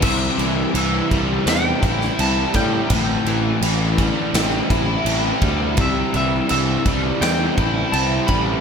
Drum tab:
CC |x-x-x-x-x-x-x-x-|x-x-x-x-x-x-x-x-|x-x-x-x-x-x-x-x-|
SD |--------o--o----|--------o-------|--------o-------|
BD |o-----o---o---o-|o-----o---o---o-|o-----o---o---o-|